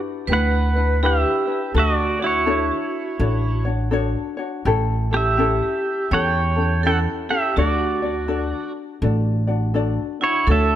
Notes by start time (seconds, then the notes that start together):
Already playing: D4 E4 B4
0.27 D2 D4 E4 G4 B4
0.33 B4 F#5
0.75 D4 E4 B4
1.03 D4 E4 G4 B4 E5
1.47 D4 E4 B4
1.74 D2 D4 F#4 A4
1.79 D#5
1.96 D5
2.19 D4 F#4 C#5
2.24 E4 C#5
2.46 D4 F#4 A4 C#5
3.19 A1 D4 F#4 A4 C#5
3.65 D4 F#4 C#5
3.91 D4 F#4 A4 C#5
4.37 D4 F#4 C#5
4.65 A1 C#4 E4 G4 A4
5.11 C#4 E4 G4 A4
5.17 E5
5.37 C#4 E4 G4 A4
6.11 E2 C#4 E4 G4 A4 C#5 G5
6.56 C#4 E4 A4
6.83 C#4 E4 G4 A4 F#5
7.29 C#4 E4 G4 A4 E5
7.56 D2 D4 F#4 A4 D5
8.02 D4 F#4 D5
8.28 D4 F#4 A4 D5
9.02 A1 D4 F#4 A4 D5
9.47 D4 F#4 D5
9.74 D4 F#4 A4 D5
10.21 D4 E4 F#4 C#5
10.47 D2 D4 F#4 A4 C#5
10.51 A4 E5